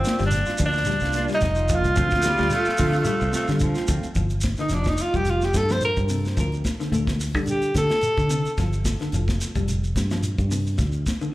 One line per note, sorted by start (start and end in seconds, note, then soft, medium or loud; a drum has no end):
0.00 0.21 C4 medium
0.04 0.22 A#3 medium
0.04 0.22 D4 medium
0.04 0.22 F4 medium
0.04 snare medium
0.04 closed hi-hat medium
0.04 shekere medium
0.19 0.45 G1 medium
0.19 0.34 G3 medium
0.19 snare soft
0.19 closed hi-hat soft
0.19 shekere soft
0.26 0.60 D4 loud
0.31 snare soft
0.31 closed hi-hat medium
0.31 shekere loud
0.46 0.59 D4 soft
0.46 0.59 F4 medium
0.46 snare soft
0.46 closed hi-hat soft
0.46 shekere soft
0.58 0.99 D2 medium
0.58 0.74 F3 medium
0.58 0.77 A#3 medium
0.58 0.77 D4 medium
0.58 0.77 F4 medium
0.58 kick medium
0.58 open hi-hat medium
0.58 shekere medium
0.65 1.28 D4 loud
0.73 shekere soft
0.77 snare soft
0.85 1.01 G3 medium
0.85 closed hi-hat medium
0.85 shekere medium
0.90 snare soft
1.00 1.27 C2 medium
1.00 1.13 D4 medium
1.00 1.14 F4 medium
1.00 closed hi-hat soft
1.00 shekere soft
1.04 snare soft
1.13 1.32 A#3 medium
1.13 1.32 D4 medium
1.13 1.32 F4 medium
1.13 closed hi-hat soft
1.13 shekere medium
1.17 snare soft
1.28 1.44 G3 medium
1.28 snare soft
1.28 shekere soft
1.34 1.77 D#4 loud
1.41 1.81 F1 medium
1.41 kick medium
1.41 snare soft
1.41 closed hi-hat medium
1.41 shekere medium
1.55 1.69 F4 medium
1.55 closed hi-hat soft
1.55 shekere soft
1.69 1.84 F3 medium
1.69 1.87 A#3 medium
1.69 1.87 D4 medium
1.69 1.87 F4 medium
1.69 kick medium
1.69 closed hi-hat soft
1.69 shekere medium
1.75 3.65 F4 loud
1.84 1.96 C2 loud
1.84 closed hi-hat soft
1.84 shekere soft
1.96 2.36 D2 loud
1.96 2.11 F3 medium
1.96 2.11 A3 medium
1.96 2.11 C4 medium
1.96 2.09 F4 medium
1.96 kick medium
1.96 closed hi-hat medium
1.96 shekere loud
2.10 2.23 C4 soft
2.10 kick medium
2.10 snare soft
2.10 closed hi-hat soft
2.10 shekere soft
2.19 2.27 A3 medium
2.19 shekere medium
2.24 2.54 G3 loud
2.24 2.41 A3 medium
2.24 2.42 C4 medium
2.24 2.42 F4 medium
2.24 snare medium
2.24 closed hi-hat soft
2.38 2.51 D2 medium
2.38 2.53 G3 medium
2.38 snare soft
2.38 closed hi-hat soft
2.38 shekere soft
2.50 3.06 A3 loud
2.50 snare soft
2.50 closed hi-hat medium
2.50 shekere medium
2.65 2.78 C4 medium
2.65 2.78 F4 medium
2.65 muted fingered electric bass stroke soft
2.65 shekere soft
2.69 snare soft
2.77 3.05 D3 loud
2.77 2.94 F3 medium
2.77 2.96 A3 medium
2.77 2.97 C4 medium
2.77 2.97 F4 medium
2.77 kick medium
2.77 open hi-hat medium
2.77 shekere medium
2.93 shekere soft
3.05 3.21 G3 medium
3.05 3.32 A3 loud
3.05 closed hi-hat medium
3.05 shekere loud
3.20 3.33 C2 medium
3.20 3.31 C4 soft
3.20 3.31 F4 medium
3.20 shekere soft
3.32 3.51 A3 medium
3.32 3.47 A3 medium
3.32 3.51 C4 medium
3.32 3.51 F4 medium
3.32 muted fingered electric bass stroke soft
3.32 snare soft
3.32 closed hi-hat medium
3.32 shekere medium
3.48 3.74 D3 loud
3.48 3.64 G3 medium
3.48 snare soft
3.48 closed hi-hat soft
3.48 shekere soft
3.60 4.14 F3 medium
3.60 kick medium
3.60 closed hi-hat medium
3.60 shekere loud
3.75 3.87 C4 medium
3.75 3.87 F4 medium
3.75 snare soft
3.75 closed hi-hat soft
3.75 shekere soft
3.87 4.03 D2 medium
3.87 4.04 F3 medium
3.87 4.06 A3 medium
3.87 4.06 C4 medium
3.87 4.07 F4 medium
3.87 kick medium
3.87 closed hi-hat medium
3.87 shekere medium
4.03 muted fingered electric bass stroke soft
4.03 closed hi-hat soft
4.03 shekere soft
4.15 4.56 G1 medium
4.15 4.31 F3 medium
4.15 kick medium
4.15 closed hi-hat medium
4.15 shekere medium
4.30 closed hi-hat soft
4.30 shekere soft
4.41 kick medium
4.41 snare medium
4.41 closed hi-hat medium
4.41 shekere medium
4.57 4.66 D3 medium
4.57 4.75 D#4 medium
4.57 snare soft
4.57 closed hi-hat soft
4.57 shekere soft
4.69 4.97 F1 medium
4.69 4.86 F3 medium
4.69 snare soft
4.69 closed hi-hat medium
4.69 shekere medium
4.73 4.90 D4 medium
4.84 kick medium
4.84 snare medium
4.84 shekere soft
4.88 5.03 D#4 medium
4.97 snare soft
4.97 closed hi-hat medium
4.97 shekere medium
5.02 5.17 F4 medium
5.14 5.51 F1 medium
5.14 5.29 G3 medium
5.14 5.31 G4 medium
5.14 kick medium
5.14 closed hi-hat soft
5.14 shekere soft
5.25 closed hi-hat medium
5.25 shekere medium
5.30 5.46 F4 medium
5.41 5.58 G4 medium
5.41 snare soft
5.41 shekere soft
5.54 5.94 G2 medium
5.54 5.73 A4 medium
5.54 kick medium
5.54 snare medium
5.54 closed hi-hat soft
5.54 shekere medium
5.69 5.85 F3 medium
5.69 5.84 C5 medium
5.69 snare medium
5.69 closed hi-hat soft
5.69 shekere soft
5.81 6.01 A#4 loud
5.81 closed hi-hat medium
5.81 shekere medium
5.97 6.34 G2 medium
5.97 kick medium
5.97 closed hi-hat soft
5.97 shekere soft
6.09 6.25 C3 medium
6.09 open hi-hat medium
6.09 shekere medium
6.25 snare soft
6.25 shekere soft
6.37 6.63 D2 medium
6.37 6.52 F3 medium
6.37 kick medium
6.37 snare soft
6.37 closed hi-hat medium
6.37 shekere medium
6.52 closed hi-hat soft
6.52 shekere soft
6.64 kick medium
6.64 snare medium
6.64 closed hi-hat soft
6.64 shekere medium
6.80 6.87 D3 medium
6.80 snare soft
6.80 closed hi-hat soft
6.80 shekere soft
6.92 7.35 D2 loud
6.92 7.07 A3 medium
6.92 closed hi-hat medium
6.92 shekere medium
7.07 kick medium
7.07 snare medium
7.07 shekere soft
7.19 snare soft
7.19 open hi-hat medium
7.19 shekere medium
7.35 7.72 D3 medium
7.35 7.50 G3 medium
7.35 kick medium
7.35 shekere soft
7.46 closed hi-hat medium
7.46 shekere medium
7.50 7.75 G4 medium
7.62 closed hi-hat soft
7.62 shekere soft
7.74 7.89 D3 medium
7.74 8.55 A4 loud
7.74 kick medium
7.74 snare medium
7.74 closed hi-hat soft
7.74 shekere medium
7.89 snare medium
7.89 closed hi-hat soft
7.89 shekere soft
8.01 muted fingered electric bass stroke soft
8.01 closed hi-hat medium
8.01 shekere medium
8.17 8.43 D3 medium
8.17 kick medium
8.17 closed hi-hat soft
8.17 shekere soft
8.29 8.45 C3 medium
8.29 closed hi-hat medium
8.29 shekere medium
8.45 closed hi-hat soft
8.45 shekere soft
8.57 8.97 G1 medium
8.57 8.73 F3 medium
8.57 kick medium
8.57 snare soft
8.57 closed hi-hat medium
8.57 shekere medium
8.73 closed hi-hat soft
8.73 shekere soft
8.84 kick medium
8.84 snare medium
8.84 closed hi-hat medium
8.84 shekere medium
9.00 9.08 D3 medium
9.00 snare soft
9.00 closed hi-hat soft
9.00 shekere soft
9.12 9.39 F1 medium
9.12 9.29 F3 medium
9.12 closed hi-hat medium
9.12 shekere medium
9.28 kick medium
9.28 snare medium
9.28 shekere soft
9.41 snare soft
9.41 closed hi-hat medium
9.41 shekere medium
9.55 9.93 F1 medium
9.55 9.70 G3 medium
9.55 kick medium
9.55 closed hi-hat soft
9.55 shekere soft
9.68 closed hi-hat medium
9.68 shekere medium
9.84 shekere soft
9.96 10.35 G2 medium
9.96 kick medium
9.96 snare medium
9.96 closed hi-hat soft
9.96 shekere medium
10.10 10.26 F3 medium
10.10 snare medium
10.10 closed hi-hat soft
10.10 shekere soft
10.23 closed hi-hat medium
10.23 shekere loud
10.38 10.76 G2 medium
10.38 kick medium
10.38 closed hi-hat soft
10.38 shekere soft
10.51 10.66 C3 medium
10.51 open hi-hat medium
10.51 shekere medium
10.67 shekere soft
10.78 11.04 D2 medium
10.78 muted clean electric guitar stroke medium
10.78 kick medium
10.78 snare soft
10.78 closed hi-hat medium
10.78 shekere medium
10.92 closed hi-hat soft
10.92 shekere soft
11.06 kick medium
11.06 snare medium
11.06 closed hi-hat medium
11.06 shekere medium
11.21 11.28 D3 medium
11.21 closed hi-hat soft
11.21 shekere soft